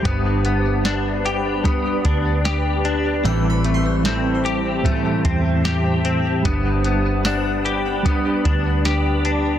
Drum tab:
HH |xxxxxxxx|xxxxxxxx|xxxxxxxx|
SD |--o---o-|--o---o-|--o---o-|
BD |o---oo--|----oo--|o---oo--|